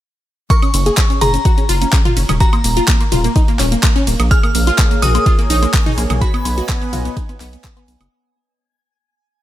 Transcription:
0.50 A#4 C#6, kick, closed hi-hat, ride, shaker
0.62 C#4, closed hi-hat, high woodblock, shaker
0.74 F#1 C#4, open hi-hat, ride, high woodblock, shaker
0.86 G#4, closed hi-hat, high conga, shaker
0.97 C#4, kick, clap, closed hi-hat, ride, shaker
1.10 C#4, closed hi-hat, shaker
1.21 F#1 G#4 A#5, open hi-hat, mid tom, ride, high woodblock, shaker
1.34 C#4, closed hi-hat, shaker
1.45 F#4, kick, closed hi-hat, ride, shaker
1.58 C#4, closed hi-hat, shaker
1.69 F#1 F4, open hi-hat, ride, high woodblock, shaker
1.81 C#4, closed hi-hat, high conga, shaker
1.93 C#4, kick, clap, closed hi-hat, ride, shaker
2.05 F4, closed hi-hat, mid tom, high woodblock, shaker
2.17 F#1 C#4, open hi-hat, ride, shaker
2.29 D#1 C#4, closed hi-hat, mid tom, high woodblock, shaker
2.40 F#4 A#5, kick, closed hi-hat, ride, shaker
2.53 A#3, closed hi-hat, high woodblock, shaker
2.64 D#1 A#3, open hi-hat, ride, shaker
2.77 F4, closed hi-hat, high conga, shaker
2.88 A#3, kick, clap, closed hi-hat, ride, shaker
3.01 A#3, closed hi-hat, high woodblock, shaker
3.12 D#1 F4, open hi-hat, mid tom, ride, shaker
3.24 A#3, closed hi-hat, shaker
3.36 D#4, kick, closed hi-hat, ride, high woodblock, shaker
3.48 A#3, closed hi-hat, shaker
3.59 D#1 C#4, clap, open hi-hat, ride, shaker
3.72 A#3, closed hi-hat, high conga, shaker
3.83 kick, clap, closed hi-hat, ride, high woodblock, shaker
3.96 C#4, closed hi-hat, shaker
4.07 D#1 A#3, open hi-hat, ride, shaker
4.19 A#1 A#3, closed hi-hat, high woodblock, shaker
4.31 G#4 A#4 C#5 G#5 F6, kick, closed hi-hat, ride, high woodblock, shaker
4.43 A#3, closed hi-hat, high woodblock, shaker
4.55 A#1 A#3, open hi-hat, ride, shaker
4.67 F4, closed hi-hat, high conga, high woodblock, shaker
4.78 A#3, kick, clap, closed hi-hat, ride, shaker
4.91 A#3, closed hi-hat, shaker
5.02 A#1 F#4 D#6, open hi-hat, mid tom, ride, shaker
5.15 A#3, closed hi-hat, high woodblock, shaker
5.26 F4, kick, closed hi-hat, ride, shaker
5.39 A#3, closed hi-hat, shaker
5.50 A#1 D#4, open hi-hat, ride, shaker
5.62 A#3, closed hi-hat, high conga, high woodblock, shaker
5.74 A#3, kick, clap, closed hi-hat, ride, shaker
5.86 D#4, closed hi-hat, mid tom, shaker
5.98 A#1 A#3, open hi-hat, ride, high woodblock, shaker
6.10 B1 A#3, closed hi-hat, mid tom, high woodblock, shaker
6.21 B3 F#4 B4 D#5 F#5 B5, kick, closed hi-hat, ride, shaker
6.34 B3, closed hi-hat, high woodblock, shaker
6.45 B1 B3, open hi-hat, ride, high woodblock, shaker
6.58 F#4, closed hi-hat, high conga, shaker
6.69 B3, kick, clap, closed hi-hat, ride, shaker
6.81 B3, closed hi-hat, shaker
6.93 B1 F4, open hi-hat, mid tom, ride, high woodblock, shaker
7.05 B3, closed hi-hat, shaker
7.17 D#4, kick, closed hi-hat, ride, shaker
7.29 B3, closed hi-hat, high woodblock, shaker
7.40 B1 B3, clap, open hi-hat, ride, shaker
7.53 B3, closed hi-hat, high conga, shaker
7.64 B3, kick, clap, closed hi-hat, ride, shaker
7.77 B3, closed hi-hat, high woodblock, shaker
7.88 B1 B3, open hi-hat, ride, shaker
8.00 F#1 B3, closed hi-hat, high woodblock, shaker

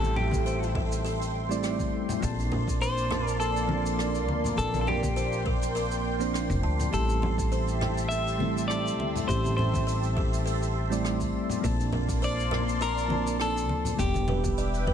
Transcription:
Already playing: A1 G3 A3 C4 E4 A4 E5 G5 C6, downlifter
0.02 open hi-hat, high conga, shaker
0.16 G4 A4, muted conga, low conga
0.31 kick, open hi-hat, high conga, shaker
0.46 C5, open hi-hat, shaker
0.62 open hi-hat, shaker
0.75 A4, kick, low conga
0.92 open hi-hat, shaker
1.05 A4, open hi-hat, shaker
1.21 open hi-hat, shaker
1.49 G3 A3 C4 E4 D5, open hi-hat, shaker
1.62 G3 A3 C4 E4 D5, cross-stick, open hi-hat, shaker
1.79 kick, open hi-hat, high conga, shaker
2.09 open hi-hat, low conga, shaker
2.20 A#1 F3 A#3 C4 D4 A4 D5 A5, kick, open hi-hat, shaker
2.24 A5
2.38 open hi-hat, shaker
2.52 A#4, muted conga, low conga
2.67 kick, open hi-hat, shaker
2.81 C5, open hi-hat, shaker
2.97 open hi-hat, shaker
3.11 A#4, cross-stick, muted conga, low conga
3.28 A#4, open hi-hat, shaker
3.40 A4 A#4, open hi-hat, shaker
3.56 open hi-hat, shaker
3.67 F3 A#3 C4 D4, high conga
3.71 A5
3.86 open hi-hat, shaker
3.99 cross-stick, open hi-hat, shaker
4.15 open hi-hat, shaker
4.29 D2, muted conga
4.44 open hi-hat, low conga, shaker
4.55 A#1 F3 A#3 C4 D4 A4 G5, kick, open hi-hat, shaker
4.73 open hi-hat, high conga, shaker
4.81 A4
4.87 G4 A#4, muted conga, low conga
5.03 kick, open hi-hat, high conga, shaker
5.16 C5, open hi-hat, shaker
5.32 open hi-hat, shaker
5.46 A#4, kick, low conga
5.61 open hi-hat, shaker
5.74 A#4, open hi-hat, shaker
5.91 open hi-hat, shaker
6.19 F3 A#3 C4 D4 C5, open hi-hat, shaker
6.33 F3 A#3 C4 D4 C5, cross-stick, open hi-hat, shaker
6.50 F1, kick, open hi-hat, high conga, shaker
6.63 D2 A5
6.79 open hi-hat, low conga, shaker
6.90 A1 G3 A3 C4 E4 G4 A4 E5 A5, kick, open hi-hat, shaker
7.09 open hi-hat, shaker
7.22 A4, muted conga, low conga
7.38 kick, open hi-hat, shaker
7.51 C5, open hi-hat, shaker
7.67 open hi-hat, shaker
7.81 A4, cross-stick, muted conga, low conga
7.97 open hi-hat, shaker
8.09 A4 E5, open hi-hat, shaker
8.27 open hi-hat, shaker
8.38 G3 A3 C4 E4, high conga
8.42 A4
8.56 open hi-hat, shaker
8.68 D5, cross-stick, open hi-hat, shaker
8.85 open hi-hat, shaker
8.99 D2, muted conga
9.15 open hi-hat, low conga, shaker
9.26 A1 G3 A3 C4 E4 G4 C5, kick, open hi-hat, shaker
9.30 A4
9.44 open hi-hat, high conga, shaker
9.57 A4 C5, muted conga, low conga
9.73 kick, open hi-hat, high conga, shaker
9.87 C5, open hi-hat, shaker
10.03 open hi-hat, shaker
10.17 A4, kick, low conga
10.33 open hi-hat, shaker
10.46 A4, open hi-hat, shaker
10.62 open hi-hat, shaker
10.90 G3 A3 C4 E4 D5, open hi-hat, shaker
11.03 G3 A3 C4 E4 D5, cross-stick, open hi-hat, shaker
11.20 kick, open hi-hat, high conga, shaker
11.50 open hi-hat, low conga, shaker
11.61 A#1 F3 A#3 C4 D4 A4, kick, open hi-hat, shaker
11.65 D5 A5 C6
11.79 open hi-hat, shaker
11.92 A#4, muted conga, low conga
12.09 kick, open hi-hat, shaker
12.22 C5 D5, open hi-hat, shaker
12.38 open hi-hat, shaker
12.51 A#4, cross-stick, muted conga, low conga
12.68 open hi-hat, shaker
12.81 A#4, open hi-hat, shaker
12.97 open hi-hat, shaker
13.08 F3 A#3 C4 D4, high conga
13.12 A5
13.26 open hi-hat, shaker
13.39 A4, cross-stick, open hi-hat, shaker
13.56 open hi-hat, shaker
13.69 D2, muted conga
13.85 open hi-hat, low conga, shaker
13.97 E1 E3 G3 B3 D4 G4 B4 E5 G5 D6, kick, open hi-hat, shaker
14.01 G4
14.14 open hi-hat, high conga, shaker
14.28 B4, muted conga, low conga
14.44 kick, open hi-hat, high conga, shaker
14.58 D5, open hi-hat, shaker
14.73 open hi-hat, shaker
14.87 B4, kick, muted conga, low conga

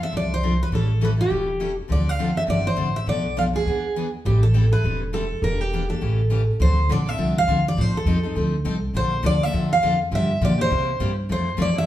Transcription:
0.00 C4 D4 A4 E5
0.12 C2 F3 C4 D4 A4
0.17 D5
0.34 C5
0.43 F3 C4 D4 A4
0.63 B4
0.72 A1 E3 G3 C#4 E4 A4
1.01 E3 G3 C#4 E4 A4 B4
1.17 C#4 E4 A4
1.21 G4
1.30 E1 E3 G3 C#4 E4 A4
1.60 E3 G3 C#4 E4 A4
1.88 D2 D3 F3 C4 D4 A4
1.92 D5
2.09 F5
2.19 D3 F3 C4 D4 A4
2.35 C4 D4 A4 E5
2.47 G1 D3 F3 C4 D4 A4 D5
2.67 C5
2.76 A1 D3 F3 C4 D4 A4
2.96 E5
3.06 B1 B2 F3 A3 D4 A4 D5
3.37 B2 F3 A3 D4 A4 F5
3.53 A3 D4 G#4 A4
3.66 E2 E3 B3 D4 G#4
3.96 E3 B3 D4 G#4
4.25 A1 E3 G3 C4 E4 G4 A4
4.43 A4
4.54 E3 G3 C4 E4 A4
4.72 C4 E4 A4 B4
4.84 E1 E3 G3 C4 E4 A4
5.13 E3 G3 C4 E4 A4
5.42 E1 E3 A#3 D4 G4 A#4
5.61 G4
5.73 E3 A#3 D4 G4
5.89 A#3 D4 G4 A4
6.01 A1 C#3 E3 A3 C#4 G4
6.30 C#3 E3 A3 C#4 G4
6.60 D2 D3 F3 C4 D4 A4 C5
6.89 A#1 D3 F3 C4 D4 A4 D5
7.06 C4 D4 A4 E5
7.18 C2 D3 F3 C4 D4 A4
7.38 F5
7.47 D2 D3 F3 C4 D4 A4
7.68 D5
7.77 A2 F3 C4 D#4 A4 C5
7.93 A4, muted upright bass stroke
8.05 F2 F3 C4 D#4 A4
8.23 C4 D#4 A4
8.35 D2 F3 C4 D#4 A4
8.64 C2 F3 C4 D#4 A4
8.94 A#1 D3 F3 A#3 D4 A4 C5
9.23 D2 D3 F3 A#3 D4 A4 D5
9.41 A#3 D4 A4 E5
9.53 E2 D3 F3 A#3 D4 A4
9.73 F5
9.82 F2 D3 F3 A#3 D4 A4
10.11 G2 D3 F3 A#3 D4 G4 E5
10.41 A#2 D3 F3 A#3 D4 G4 D5
10.58 A#3 D4 G4 C5
10.70 C3 G3 A#3 E4 G4
11.00 G2 C3 G3 A#3 E4 G4
11.29 F2 F3 A3 C4 E4 A4 C5
11.57 E2 F3 A3 C4 E4 A4
11.62 D5
11.73 C4 E4 A4
11.78 E5

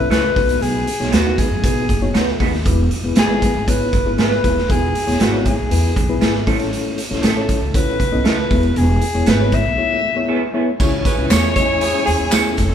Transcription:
Already playing: E4 B4
0.00 C#4 A4 E5
0.10 C#2 C#4 E4 A4 B4 C#5, snare, closed hi-hat
0.36 B1 B3 D#4 F#4 B4, kick, open hi-hat
0.49 closed hi-hat
0.61 B1 G#4, closed hi-hat
0.87 closed hi-hat
1.00 B1 B3 D#4 F#4 C#5, snare
1.12 D#2 B3 D#4 F#4 B4, snare, closed hi-hat
1.26 B3 D#4 F#4 B4
1.38 G#4, kick, closed hi-hat
1.51 F#2
1.63 B2 B3 D#4 F#4 B4, kick, closed hi-hat
1.89 F#1, kick, closed hi-hat
2.02 B3 D#4 F#4 C#5
2.14 D2 B3 D#4 F#4 B4, snare, closed hi-hat
2.28 snare
2.40 D#2 B3 D#4 F#4 G#4 B4, kick, open hi-hat
2.54 snare
2.65 E1 B3 E4 G#4 B4, kick, closed hi-hat
2.91 closed hi-hat
3.04 E1 B3 E4 G#4 B4
3.16 G#1 B3 E4 G#4 B4, snare, closed hi-hat
3.30 B3 E4 G#4 B4
3.42 kick, closed hi-hat
3.55 G#1
3.68 B3 E4 G#4 B4 C#5, kick, closed hi-hat
3.93 F#1, kick, closed hi-hat
4.05 G#1 B3 E4 G#4 B4
4.18 G#1 B3 E4 G#4 B4, snare, closed hi-hat
4.32 snare
4.43 D#1 B3 E4 G#4 B4, kick, closed hi-hat
4.58 snare
4.69 E1 B3 E4 G#4 B4, kick, closed hi-hat
4.95 closed hi-hat
5.07 E1 B3 E4 G#4 C#5, snare, closed hi-hat
5.20 G#1 B3 E4 F#4 G#4 B4, snare, closed hi-hat
5.33 B3 E4 G#4 C#5
5.46 G#4, kick, closed hi-hat
5.58 B1
5.71 E2 B3 E4 G#4 B4, closed hi-hat
5.96 B1, kick, closed hi-hat
6.09 B3 E4 G#4 B4
6.21 G#1 B3 E4 G#4 B4, snare, closed hi-hat
6.35 snare
6.46 A1 A3 C#4 E4 A4 C5, kick, open hi-hat
6.54 C#5
6.60 snare, closed hi-hat
6.73 closed hi-hat
6.98 closed hi-hat
7.10 A1 C#4 E4 A4 C#5, snare
7.22 A1 A3 C#4 E4 A4, snare, closed hi-hat
7.37 C#4 E4 A4 C#5
7.49 kick, closed hi-hat
7.61 C#2
7.74 C#4 E4 A4 B4 C#5, kick, closed hi-hat
7.99 C#2, kick, closed hi-hat
8.12 B1 C#4 E4 A4 D#5
8.24 C#2 A3 C#4 E4 A4 B4, snare, closed hi-hat
8.50 E1 B3 E4 G#4 A4, kick, open hi-hat
8.57 B4
8.63 closed hi-hat
8.76 E1 G#4, closed hi-hat
9.01 closed hi-hat
9.14 E1 B3 E4 G#4 C#5
9.26 G#1 B3 E4 G#4 B4, snare, closed hi-hat
9.40 B3 E4 G#4 C#5
9.52 E5, kick, closed hi-hat
9.65 B1
9.78 B3 E4 G#4 C#5
10.16 B3 E4 G#4 C#5
10.28 B3 E4 G#4 B4 G#5
10.54 B3 E4 G#4 B4 C#5 E5
10.79 C#2 E3 G#3 C#4 E4 G#4 C#5 G#5, kick, crash, tambourine
11.05 E4 G#4 B4 C#5, kick, closed hi-hat, tambourine
11.17 C#2 C#4 E4 G#4 C#5
11.30 E2 C#4 E4 G#4 C#5, snare, clap, closed hi-hat, tambourine
11.56 C#4 E4 G#4 C#5 D#5, kick, closed hi-hat, tambourine
11.68 E2
11.81 E4 G#4 C#5, closed hi-hat, tambourine
11.94 C#4 E4 G#4 C#5
12.06 D#2 G#4, closed hi-hat, tambourine
12.20 E2
12.32 E2 C#4 E4 G#4 C#5, snare, clap, closed hi-hat, tambourine
12.45 C#4 E4 G#4 C#5
12.57 F1 A4, kick, closed hi-hat, tambourine
12.72 snare

